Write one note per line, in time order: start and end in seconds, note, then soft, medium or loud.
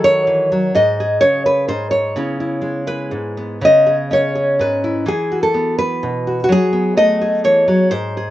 0.00 0.72 D#3 medium
0.00 0.51 F#3 medium
0.00 0.72 F#4 soft
0.00 0.52 A4 medium
0.04 0.75 C#5 medium
0.27 0.51 E3 soft
0.52 0.75 F#3 medium
0.75 1.21 G#2 medium
0.75 1.20 D#5 medium
1.00 2.17 G#4 soft
1.21 1.69 C#3 medium
1.21 1.44 C#5 medium
1.46 1.68 B4 medium
1.68 2.15 G#2 medium
1.68 1.90 C5 medium
1.91 3.61 C#5 medium
2.16 3.12 C#3 medium
2.16 3.36 B3 soft
2.16 2.39 E4 soft
2.40 2.86 E4 soft
2.62 3.58 G#3 medium
2.87 3.59 E4 soft
2.87 3.62 B4 medium
3.11 3.61 G#2 medium
3.37 4.83 B3 soft
3.61 4.59 C#3 medium
3.61 4.12 D#5 medium
3.87 4.34 G#4 soft
4.11 5.04 C#4 soft
4.11 5.08 C#5 medium
4.35 4.59 G#4 soft
4.59 5.07 G#2 medium
4.59 5.08 B4 medium
4.84 5.04 E4 soft
5.06 6.46 E3 medium
5.06 5.42 G#4 medium
5.32 6.26 F#4 soft
5.43 5.78 A4 medium
5.54 6.49 B3 medium
5.79 6.49 B4 medium
6.03 6.47 B2 medium
6.27 6.43 F#4 soft
6.44 6.50 F#4 medium
6.49 7.43 F#3 medium
6.49 6.97 G#4 medium
6.73 7.91 B3 soft
6.97 7.67 A3 medium
6.97 7.44 D#5 loud
7.21 7.89 G#4 soft
7.44 7.67 E3 medium
7.44 7.90 C#5 medium
7.68 7.91 F#3 medium
7.91 8.30 G#2 medium
7.91 8.30 C5 medium
8.17 8.30 G#4 soft